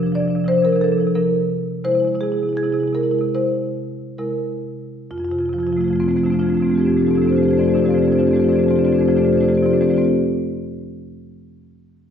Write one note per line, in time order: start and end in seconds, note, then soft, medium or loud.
0.00 0.07 C3 soft
0.00 0.12 F3 soft
0.00 0.06 D4 soft
0.00 0.13 A#4 medium
0.06 0.16 C3 soft
0.06 0.15 D4 soft
0.12 0.20 F3 soft
0.12 0.22 D4 soft
0.12 0.46 D5 medium
0.16 0.26 C3 soft
0.16 0.27 F3 soft
0.22 0.36 C3 soft
0.22 0.30 D4 soft
0.27 0.35 F3 soft
0.27 0.40 D4 soft
0.35 0.46 C3 soft
0.35 0.44 F3 soft
0.40 0.49 D4 soft
0.44 0.55 C3 soft
0.44 0.52 F3 soft
0.44 0.64 C5 medium
0.49 0.62 F3 soft
0.49 0.58 D4 soft
0.55 0.64 C3 soft
0.55 0.67 D4 soft
0.62 0.73 C3 soft
0.62 0.69 F3 soft
0.62 0.81 A#4 medium
0.67 0.76 F3 soft
0.67 0.75 D4 soft
0.73 0.80 C3 soft
0.73 0.84 F3 soft
0.73 0.84 D4 soft
0.80 0.89 C3 soft
0.80 0.92 D4 soft
0.80 1.14 A4 medium
0.84 0.91 F3 soft
0.89 0.98 C3 soft
0.89 1.01 F3 soft
0.89 1.00 D4 soft
0.98 1.07 C3 soft
0.98 1.11 F3 soft
0.98 1.11 D4 soft
1.07 1.11 C3 soft
1.15 1.82 C3 medium
1.15 1.82 F3 medium
1.15 1.82 D4 soft
1.15 1.82 A#4 medium
1.84 1.95 C3 medium
1.84 1.93 G#3 soft
1.84 1.92 E4 soft
1.84 2.19 C5 medium
1.92 2.05 C3 soft
1.92 2.02 G#3 soft
1.92 2.00 E4 soft
2.00 2.12 G#3 soft
2.00 2.08 E4 soft
2.05 2.15 C3 medium
2.05 2.15 E4 soft
2.12 2.23 C3 soft
2.12 2.21 G#3 soft
2.12 2.23 E4 soft
2.21 2.34 C3 soft
2.21 2.30 G#3 soft
2.21 2.32 E4 soft
2.21 2.56 G#4 medium
2.30 2.43 C3 soft
2.30 2.38 G#3 soft
2.30 2.40 E4 soft
2.38 2.46 G#3 soft
2.38 2.49 E4 soft
2.43 2.53 C3 soft
2.43 2.55 G#3 soft
2.49 2.63 C3 soft
2.49 2.57 E4 soft
2.55 2.64 G#3 soft
2.55 2.64 E4 soft
2.55 2.93 G#4 medium
2.63 2.73 C3 soft
2.63 2.70 G#3 soft
2.63 2.72 E4 soft
2.70 2.83 C3 soft
2.70 2.79 G#3 soft
2.70 2.80 E4 soft
2.79 2.87 G#3 soft
2.79 2.88 E4 soft
2.83 2.93 C3 soft
2.83 2.97 G#3 soft
2.88 2.95 E4 soft
2.93 3.01 C3 soft
2.93 3.03 E4 soft
2.93 3.33 A#4 medium
2.97 3.05 G#3 soft
3.01 3.11 C3 soft
3.01 3.14 G#3 soft
3.01 3.11 E4 soft
3.11 3.21 C3 soft
3.11 3.22 G#3 soft
3.11 3.19 E4 soft
3.19 3.31 C3 soft
3.19 3.30 G#3 soft
3.19 3.31 E4 soft
3.35 4.16 C3 medium
3.35 4.16 G#3 soft
3.35 4.16 E4 soft
3.35 4.15 C5 medium
4.18 5.08 C3 medium
4.18 5.08 G#3 soft
4.18 5.08 E4 soft
4.18 5.07 A#4 medium
5.11 5.20 F2 medium
5.11 5.18 F4 medium
5.18 5.30 F2 soft
5.18 5.25 F4 soft
5.25 5.32 F4 soft
5.30 5.40 F2 soft
5.30 5.41 C3 medium
5.30 5.39 F4 soft
5.39 5.49 F2 soft
5.39 5.49 C3 soft
5.39 5.46 F4 soft
5.46 5.59 F2 soft
5.46 5.59 C3 soft
5.46 5.53 F4 soft
5.53 5.63 F3 soft
5.53 5.60 F4 soft
5.59 5.69 F2 soft
5.59 5.68 C3 soft
5.59 5.67 F4 soft
5.63 5.72 F3 soft
5.63 5.73 F4 medium
5.68 5.80 F2 soft
5.68 5.77 C3 soft
5.72 5.82 F3 soft
5.72 5.81 F4 soft
5.77 5.90 F2 soft
5.77 5.86 C3 soft
5.77 5.84 A3 soft
5.81 5.90 F3 soft
5.81 5.93 A3 soft
5.81 5.88 F4 soft
5.86 5.95 C3 soft
5.86 5.99 F3 soft
5.86 5.96 F4 soft
5.90 5.99 F2 soft
5.90 6.01 A3 soft
5.95 6.05 C3 soft
5.95 6.03 F4 soft
5.99 6.08 F2 soft
5.99 6.08 F3 soft
5.99 6.09 A3 soft
5.99 6.08 C4 medium
5.99 6.11 F4 soft
6.05 6.17 F2 soft
6.05 6.13 C3 soft
6.05 6.17 F3 soft
6.05 6.16 C4 soft
6.09 6.17 A3 soft
6.09 6.18 F4 soft
6.13 6.27 F2 soft
6.13 6.23 C3 soft
6.13 6.26 F3 soft
6.13 6.26 A3 soft
6.13 6.24 C4 soft
6.18 6.25 F4 soft
6.23 6.37 F2 soft
6.23 6.32 C3 soft
6.23 6.34 F3 soft
6.23 6.34 A3 soft
6.23 6.30 C4 soft
6.23 6.32 D4 soft
6.23 6.32 F4 soft
6.30 6.41 C3 soft
6.30 6.43 F3 soft
6.30 6.42 A3 soft
6.30 6.39 C4 soft
6.30 6.39 D4 soft
6.30 6.40 F4 soft
6.37 6.47 F2 soft
6.37 6.50 C3 soft
6.37 6.47 C4 soft
6.37 6.46 D4 soft
6.37 6.48 F4 soft
6.42 6.52 F3 soft
6.42 6.50 A3 soft
6.46 6.56 F2 soft
6.46 6.57 A3 soft
6.46 6.55 C4 soft
6.46 6.54 D4 soft
6.46 6.57 F4 soft
6.50 6.60 C3 soft
6.50 6.61 F3 soft
6.50 6.62 D4 soft
6.55 6.67 F2 soft
6.55 6.64 A3 soft
6.55 6.63 C4 soft
6.55 6.66 F4 soft
6.60 6.70 C3 soft
6.60 6.69 F3 soft
6.60 6.70 C4 soft
6.60 6.69 D4 soft
6.64 6.77 F2 soft
6.64 6.71 A3 soft
6.64 6.74 F4 soft
6.69 6.80 C3 soft
6.69 6.79 F3 soft
6.69 6.80 A3 soft
6.69 6.78 C4 soft
6.69 6.77 D4 soft
6.74 6.88 F2 soft
6.74 6.86 C4 soft
6.74 6.85 D4 soft
6.74 6.81 F4 soft
6.74 6.83 G4 soft
6.79 6.89 C3 soft
6.79 6.88 F3 soft
6.79 6.87 A3 soft
6.79 6.90 F4 soft
6.79 6.90 G4 soft
6.85 6.98 F2 soft
6.85 6.97 F3 soft
6.85 6.97 A3 soft
6.85 6.94 C4 soft
6.85 6.92 D4 soft
6.89 6.98 C3 soft
6.89 6.99 D4 soft
6.89 6.98 F4 soft
6.89 6.98 G4 soft
6.94 7.08 F2 soft
6.94 7.08 C3 soft
6.94 7.07 F3 soft
6.94 7.05 A3 soft
6.94 7.02 C4 soft
6.94 7.06 F4 soft
6.94 7.07 G4 soft
6.99 7.11 C4 soft
6.99 7.08 D4 soft
6.99 7.11 A4 soft
7.05 7.18 F2 soft
7.05 7.18 C3 soft
7.05 7.15 F3 soft
7.05 7.14 A3 soft
7.05 7.15 D4 soft
7.05 7.15 F4 soft
7.05 7.15 G4 soft
7.11 7.22 A3 soft
7.11 7.19 C4 soft
7.11 7.18 A4 soft
7.15 7.27 F2 soft
7.15 7.26 C3 soft
7.15 7.24 F3 soft
7.15 7.27 C4 soft
7.15 7.22 D4 soft
7.15 7.24 F4 soft
7.15 7.23 G4 soft
7.15 7.23 A4 soft
7.22 7.32 F3 soft
7.22 7.29 A3 soft
7.22 7.28 D4 soft
7.22 7.32 F4 soft
7.22 7.30 G4 soft
7.22 7.31 A4 soft
7.26 7.37 F2 soft
7.26 7.35 C3 soft
7.26 7.38 A3 soft
7.26 7.35 C4 soft
7.26 7.36 D4 soft
7.26 7.36 C5 soft
7.30 7.42 F3 soft
7.30 7.41 F4 soft
7.30 7.37 G4 soft
7.30 7.39 A4 soft
7.35 7.47 F2 soft
7.35 7.45 C3 soft
7.35 7.45 A3 soft
7.35 7.43 C4 soft
7.35 7.43 D4 soft
7.35 7.45 G4 soft
7.35 7.45 A4 soft
7.35 7.43 C5 soft
7.41 7.51 F3 soft
7.41 7.51 C4 soft
7.41 7.50 D4 soft
7.41 7.48 F4 soft
7.41 7.51 C5 soft
7.45 7.58 F2 soft
7.45 7.56 C3 soft
7.45 7.53 A3 soft
7.45 7.55 F4 soft
7.45 7.53 G4 soft
7.45 7.53 A4 soft
7.50 7.59 F3 soft
7.50 7.61 A3 soft
7.50 7.60 C4 soft
7.50 7.58 D4 soft
7.50 7.62 G4 soft
7.50 7.61 A4 soft
7.50 7.58 C5 soft
7.55 7.68 F2 soft
7.55 7.65 C3 soft
7.55 7.66 D4 soft
7.55 7.63 F4 soft
7.55 7.65 C5 soft
7.55 7.64 D5 soft
7.59 7.67 F3 soft
7.59 7.70 A3 soft
7.59 7.67 C4 soft
7.59 7.69 G4 soft
7.59 7.68 A4 soft
7.63 7.75 C3 soft
7.63 7.74 D4 soft
7.63 7.72 F4 soft
7.63 7.72 C5 soft
7.63 7.71 D5 soft
7.67 7.78 F2 soft
7.67 7.76 F3 soft
7.67 7.77 A3 soft
7.67 7.75 C4 soft
7.67 7.77 G4 soft
7.67 7.75 A4 soft
7.67 7.78 D5 soft
7.72 7.84 C3 soft
7.72 7.82 C4 soft
7.72 7.82 D4 soft
7.72 7.79 F4 soft
7.72 7.81 A4 soft
7.72 7.78 C5 soft
7.76 7.88 F2 soft
7.76 7.85 F3 soft
7.76 7.85 A3 soft
7.76 7.88 F4 soft
7.76 7.86 G4 soft
7.76 7.85 C5 soft
7.76 7.84 D5 soft
7.81 7.93 C3 soft
7.81 7.94 F3 soft
7.81 7.90 C4 soft
7.81 7.90 D4 soft
7.81 7.89 A4 soft
7.81 7.93 C5 soft
7.81 7.91 D5 soft
7.85 7.98 F2 soft
7.85 7.94 A3 soft
7.85 7.95 F4 soft
7.85 7.94 G4 soft
7.85 7.96 A4 soft
7.85 10.13 F5 soft
7.90 8.03 C3 soft
7.90 8.03 F3 soft
7.90 7.98 C4 soft
7.90 7.97 D4 soft
7.90 7.99 C5 soft
7.90 7.99 D5 soft
7.94 8.08 F2 soft
7.94 8.02 A3 soft
7.94 8.05 D4 soft
7.94 8.04 F4 soft
7.94 8.02 G4 soft
7.94 8.04 A4 soft
7.98 8.10 A3 soft
7.98 8.07 C4 soft
7.98 8.05 C5 soft
7.98 8.05 D5 soft
8.02 8.12 C3 soft
8.02 8.10 F3 soft
8.02 8.12 D4 soft
8.02 8.12 F4 soft
8.02 8.11 G4 soft
8.02 8.11 A4 soft
8.02 8.13 C5 soft
8.02 8.13 D5 soft
8.07 8.18 F2 soft
8.07 8.19 F3 soft
8.07 8.17 A3 soft
8.07 8.16 C4 soft
8.07 8.19 G4 soft
8.07 8.17 A4 soft
8.12 8.21 C3 soft
8.12 8.23 C4 soft
8.12 8.18 D4 soft
8.12 8.20 F4 soft
8.12 8.20 C5 soft
8.12 8.20 D5 soft
8.17 8.29 F2 soft
8.17 8.31 C3 soft
8.17 8.26 F3 soft
8.17 8.26 A3 soft
8.17 8.26 D4 soft
8.17 8.29 F4 soft
8.17 8.27 G4 soft
8.17 8.25 A4 soft
8.17 8.27 C5 soft
8.17 8.26 D5 soft
8.23 8.36 F3 soft
8.23 8.34 A3 soft
8.23 8.31 C4 soft
8.23 8.34 D4 soft
8.23 8.32 A4 soft
8.23 8.33 D5 soft
8.27 8.38 F2 soft
8.27 8.40 C3 soft
8.27 8.37 F4 soft
8.27 8.36 G4 soft
8.27 8.35 C5 soft
8.31 8.42 A3 soft
8.31 8.40 C4 soft
8.31 8.42 D4 soft
8.31 8.40 A4 soft
8.31 8.41 C5 soft
8.31 8.40 D5 soft
8.36 8.48 F2 soft
8.36 8.45 F3 soft
8.36 8.44 F4 soft
8.36 8.45 G4 soft
8.36 8.47 D5 soft
8.40 8.49 C3 soft
8.40 8.50 A3 soft
8.40 8.49 C4 soft
8.40 8.49 D4 soft
8.40 8.47 A4 soft
8.40 8.48 C5 soft
8.44 8.53 F3 soft
8.44 8.52 F4 soft
8.44 8.52 G4 soft
8.44 8.53 A4 soft
8.44 8.53 D5 soft
8.48 8.58 F2 soft
8.48 8.59 C3 soft
8.48 8.59 A3 soft
8.48 8.56 C4 soft
8.48 8.56 D4 soft
8.48 8.60 F4 soft
8.48 8.60 G4 soft
8.48 8.56 C5 soft
8.53 8.62 F3 soft
8.53 8.64 C4 soft
8.53 8.64 D4 soft
8.53 8.59 A4 soft
8.53 8.63 C5 soft
8.53 8.59 D5 soft
8.58 8.67 F2 soft
8.58 8.68 C3 soft
8.58 8.69 A3 soft
8.58 8.68 F4 soft
8.58 8.68 G4 soft
8.58 8.66 A4 soft
8.58 8.67 D5 soft
8.62 8.71 F3 soft
8.62 8.71 C4 soft
8.62 8.72 D4 soft
8.62 8.73 A4 soft
8.62 8.70 C5 soft
8.67 8.77 F2 soft
8.67 8.77 C3 soft
8.67 8.76 A3 soft
8.67 8.79 C4 soft
8.67 8.76 F4 soft
8.67 8.76 G4 soft
8.67 8.78 C5 soft
8.67 8.74 D5 soft
8.71 8.80 F3 soft
8.71 8.79 D4 soft
8.71 8.81 A4 soft
8.71 8.82 D5 soft
8.76 8.88 F2 soft
8.76 8.88 C3 soft
8.76 8.88 F3 soft
8.76 8.85 A3 soft
8.76 8.86 C4 soft
8.76 8.86 D4 soft
8.76 8.84 F4 soft
8.76 8.85 G4 soft
8.76 8.85 C5 soft
8.81 8.92 F4 soft
8.81 8.88 A4 soft
8.81 8.89 D5 soft
8.85 9.00 F2 soft
8.85 8.96 C3 soft
8.85 8.98 F3 soft
8.85 8.93 A3 soft
8.85 8.95 C4 soft
8.85 8.94 D4 soft
8.85 8.92 G4 soft
8.85 8.96 A4 soft
8.85 8.92 C5 soft
8.89 9.01 A3 soft
8.89 9.00 F4 soft
8.89 9.01 G4 soft
8.89 8.99 C5 soft
8.89 8.96 D5 soft
8.94 9.06 C3 soft
8.94 9.03 C4 soft
8.94 9.01 D4 soft
8.94 9.04 A4 soft
8.94 9.02 D5 soft
8.98 9.09 F2 soft
8.98 9.08 F3 soft
8.98 9.09 A3 soft
8.98 9.08 D4 soft
8.98 9.08 F4 soft
8.98 9.09 G4 soft
8.98 9.05 C5 soft
8.98 9.10 D5 soft
9.03 9.15 C3 soft
9.03 9.11 C4 soft
9.03 9.11 A4 soft
9.03 9.11 C5 soft
9.08 9.19 F2 soft
9.08 9.16 F3 soft
9.08 9.17 A3 soft
9.08 9.18 C4 soft
9.08 9.15 D4 soft
9.08 9.17 F4 soft
9.08 9.17 G4 soft
9.08 9.18 A4 soft
9.08 9.18 C5 soft
9.08 9.17 D5 soft
9.15 9.29 F2 soft
9.15 9.23 C3 soft
9.15 9.25 F3 soft
9.15 9.25 A3 soft
9.15 9.27 C4 soft
9.15 9.22 D4 soft
9.15 9.24 F4 soft
9.15 9.24 G4 soft
9.15 9.25 A4 soft
9.15 9.26 C5 soft
9.15 9.23 D5 soft
9.22 9.32 C3 soft
9.22 9.35 F3 soft
9.22 9.33 A3 soft
9.22 9.29 D4 soft
9.22 9.32 F4 soft
9.22 9.32 G4 soft
9.22 9.32 A4 soft
9.22 9.33 C5 soft
9.22 9.31 D5 soft
9.27 9.39 F2 soft
9.27 9.36 C4 soft
9.27 9.38 D4 soft
9.27 9.38 D5 soft
9.32 9.43 C3 soft
9.32 9.44 F3 soft
9.32 9.41 A3 soft
9.32 9.43 C4 soft
9.32 9.41 F4 soft
9.32 9.40 G4 soft
9.32 9.40 A4 soft
9.32 9.41 C5 soft
9.38 9.51 F2 soft
9.38 9.49 A3 soft
9.38 9.44 D4 soft
9.38 9.49 F4 soft
9.38 9.48 G4 soft
9.38 9.48 A4 soft
9.38 9.48 C5 soft
9.38 9.44 D5 soft
9.43 9.52 C3 soft
9.43 9.53 F3 soft
9.43 9.50 C4 soft
9.43 9.52 D4 soft
9.43 9.52 D5 soft
9.48 9.55 F2 soft
9.48 9.57 A3 soft
9.48 9.58 C4 soft
9.48 9.56 F4 soft
9.48 9.56 G4 soft
9.48 9.55 A4 soft
9.48 9.55 C5 soft
9.48 9.58 D5 soft
9.52 9.63 C3 soft
9.52 9.63 F3 soft
9.52 9.59 D4 soft
9.52 9.63 A4 soft
9.52 9.62 C5 soft
9.56 9.66 A3 soft
9.56 9.66 C4 soft
9.56 9.66 D4 soft
9.56 9.63 F4 soft
9.56 9.64 G4 soft
9.56 9.64 D5 soft
9.62 9.76 C3 soft
9.62 9.72 F3 soft
9.62 9.73 A3 soft
9.62 9.71 F4 soft
9.62 9.72 G4 soft
9.62 9.69 A4 soft
9.62 9.69 C5 soft
9.62 9.71 D5 soft
9.66 9.74 C4 soft
9.66 9.73 D4 soft
9.66 9.77 A4 soft
9.66 9.76 C5 soft
9.71 9.80 F3 soft
9.71 9.81 A3 soft
9.71 9.82 C4 soft
9.71 9.81 D4 soft
9.71 9.79 F4 soft
9.71 9.81 G4 soft
9.71 9.78 D5 soft
9.76 9.87 F4 soft
9.76 9.84 A4 soft
9.76 9.83 C5 soft
9.76 9.85 D5 soft
9.80 9.90 F3 soft
9.80 9.90 A3 soft
9.80 9.91 C4 soft
9.80 9.88 D4 soft
9.80 9.88 G4 soft
9.80 9.91 A4 soft
9.80 9.90 C5 soft
9.85 9.95 D4 soft
9.85 9.94 F4 soft
9.85 9.97 G4 soft
9.85 9.92 D5 soft
9.90 9.98 F3 soft
9.90 9.98 A3 soft
9.90 9.98 C4 soft
9.90 9.98 A4 soft
9.90 9.97 C5 soft
9.90 9.99 D5 soft
9.94 10.07 C4 soft
9.94 10.03 D4 soft
9.94 10.02 F4 soft
9.94 10.05 G4 soft
9.94 10.04 C5 soft
9.98 10.06 A3 soft
9.98 10.09 F4 soft
9.98 10.06 A4 soft
9.98 10.05 D5 soft
10.03 10.13 A3 soft
10.03 10.13 C4 soft
10.03 10.13 D4 soft
10.03 10.13 G4 soft
10.03 10.13 A4 soft
10.03 10.13 C5 soft
10.03 10.12 D5 soft
10.09 10.13 F4 soft